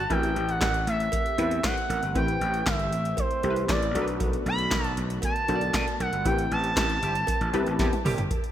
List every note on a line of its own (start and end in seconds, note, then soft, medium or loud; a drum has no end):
0.00 0.13 A5 loud
0.10 0.31 A1 loud
0.10 3.91 E3 medium
0.10 8.27 A3 medium
0.10 0.66 C4 medium
0.10 3.91 C4 medium
0.10 0.66 E4 medium
0.10 0.66 G4 medium
0.10 2.13 G4 loud
0.10 0.66 B4 medium
0.10 0.52 G5 loud
0.10 kick loud
0.10 closed hi-hat medium
0.10 cowbell medium
0.23 closed hi-hat medium
0.36 0.56 A1 loud
0.36 closed hi-hat medium
0.49 0.88 F#5 loud
0.49 closed hi-hat medium
0.61 0.82 A1 loud
0.61 kick loud
0.61 snare loud
0.61 clap medium
0.61 closed hi-hat medium
0.61 cowbell medium
0.74 closed hi-hat soft
0.87 1.08 A1 loud
0.87 1.67 E5 loud
0.87 closed hi-hat medium
1.00 closed hi-hat medium
1.12 kick loud
1.12 closed hi-hat loud
1.12 cowbell medium
1.26 closed hi-hat soft
1.38 1.59 E2 medium
1.38 1.80 C4 medium
1.38 1.80 E4 medium
1.38 1.80 G4 medium
1.38 1.81 B4 medium
1.38 closed hi-hat medium
1.38 cowbell medium
1.51 closed hi-hat medium
1.64 1.74 A2 loud
1.64 2.16 F#5 loud
1.64 kick loud
1.64 snare loud
1.64 clap loud
1.64 closed hi-hat medium
1.64 cowbell medium
1.77 closed hi-hat soft
1.90 2.00 A1 loud
1.90 closed hi-hat medium
1.90 cowbell medium
2.02 2.16 G1 medium
2.02 closed hi-hat medium
2.15 2.36 A1 loud
2.15 2.71 C4 medium
2.15 2.71 E4 medium
2.15 3.93 G4 loud
2.15 2.72 G4 medium
2.15 2.72 B4 medium
2.15 2.69 G5 loud
2.15 kick loud
2.15 closed hi-hat medium
2.15 cowbell medium
2.28 closed hi-hat medium
2.41 2.61 A1 loud
2.41 closed hi-hat medium
2.54 closed hi-hat soft
2.66 2.92 G1 loud
2.66 3.21 E5 medium
2.66 kick loud
2.66 snare loud
2.66 clap loud
2.66 closed hi-hat medium
2.66 cowbell medium
2.79 closed hi-hat soft
2.92 3.13 A1 loud
2.92 closed hi-hat medium
3.05 closed hi-hat medium
3.17 3.70 C5 medium
3.17 kick loud
3.17 closed hi-hat loud
3.17 cowbell medium
3.31 closed hi-hat soft
3.43 3.64 C2 medium
3.43 3.86 C4 medium
3.43 3.86 E4 medium
3.43 3.86 G4 medium
3.43 3.50 A4 medium
3.43 closed hi-hat medium
3.43 cowbell medium
3.50 3.89 B4 medium
3.56 closed hi-hat medium
3.69 3.90 A1 loud
3.69 4.06 D5 medium
3.69 kick loud
3.69 snare loud
3.69 clap medium
3.69 closed hi-hat medium
3.69 cowbell medium
3.83 closed hi-hat soft
3.95 4.36 B1 loud
3.95 6.24 D3 medium
3.95 6.24 B3 medium
3.95 4.77 D4 medium
3.95 4.77 F#4 medium
3.95 6.24 F#4 medium
3.95 4.77 A4 medium
3.95 4.01 A#4 medium
3.95 closed hi-hat medium
3.95 cowbell medium
4.02 4.80 B4 medium
4.08 closed hi-hat medium
4.20 kick loud
4.20 closed hi-hat medium
4.20 cowbell medium
4.33 closed hi-hat medium
4.46 4.67 B1 loud
4.46 4.95 B5 loud
4.46 closed hi-hat medium
4.58 closed hi-hat medium
4.71 4.92 B1 loud
4.71 kick loud
4.71 snare loud
4.71 clap medium
4.71 closed hi-hat loud
4.71 cowbell medium
4.84 closed hi-hat soft
4.97 5.18 B1 loud
4.97 closed hi-hat medium
5.10 closed hi-hat medium
5.22 5.97 A5 loud
5.22 kick loud
5.22 closed hi-hat loud
5.22 cowbell medium
5.36 closed hi-hat soft
5.48 5.69 B1 medium
5.48 5.91 D4 medium
5.48 5.91 F#4 medium
5.48 5.91 A4 medium
5.48 5.55 C5 medium
5.48 closed hi-hat medium
5.48 cowbell medium
5.55 5.94 D5 medium
5.61 closed hi-hat medium
5.74 5.84 B2 loud
5.74 kick loud
5.74 snare loud
5.74 clap loud
5.74 closed hi-hat medium
5.74 cowbell medium
5.88 closed hi-hat medium
6.00 6.10 B1 medium
6.00 6.28 F#5 medium
6.00 closed hi-hat medium
6.00 cowbell medium
6.13 6.26 G1 medium
6.13 closed hi-hat medium
6.25 6.46 A1 loud
6.25 8.29 E3 medium
6.25 6.81 C4 medium
6.25 8.29 C4 medium
6.25 6.82 E4 medium
6.25 8.29 G4 loud
6.25 6.82 G4 medium
6.25 6.82 B4 medium
6.25 6.52 G5 medium
6.25 kick loud
6.25 closed hi-hat medium
6.25 cowbell medium
6.39 closed hi-hat medium
6.51 6.72 A1 loud
6.51 8.02 A5 loud
6.51 closed hi-hat medium
6.64 closed hi-hat medium
6.77 6.97 A1 loud
6.77 kick loud
6.77 snare loud
6.77 clap medium
6.77 closed hi-hat medium
6.77 cowbell medium
6.90 closed hi-hat soft
7.02 7.23 G1 medium
7.02 7.14 G3 medium
7.02 7.13 C4 medium
7.02 7.14 E4 medium
7.02 7.14 G4 medium
7.02 closed hi-hat medium
7.15 closed hi-hat medium
7.27 kick loud
7.27 closed hi-hat loud
7.27 cowbell medium
7.41 7.51 A1 loud
7.41 closed hi-hat soft
7.53 7.64 C2 loud
7.53 7.96 C4 loud
7.53 7.96 E4 medium
7.53 7.96 G4 medium
7.53 7.96 B4 loud
7.53 closed hi-hat medium
7.53 cowbell medium
7.66 7.77 A1 medium
7.66 closed hi-hat soft
7.79 7.90 E2 loud
7.79 7.87 G3 medium
7.79 7.87 C4 loud
7.79 7.87 E4 medium
7.79 7.87 G4 loud
7.79 kick loud
7.79 snare medium
7.79 closed hi-hat medium
7.79 cowbell medium
7.92 closed hi-hat soft
7.92 high tom medium
8.05 8.16 F#1 loud
8.05 8.21 G3 loud
8.05 8.21 C4 medium
8.05 8.21 E4 medium
8.05 8.21 G4 loud
8.05 mid tom loud
8.05 open hi-hat medium
8.05 cowbell medium
8.18 8.28 G1 medium
8.18 closed hi-hat medium
8.18 floor tom loud
8.30 kick loud
8.30 closed hi-hat medium
8.30 cowbell medium
8.44 closed hi-hat soft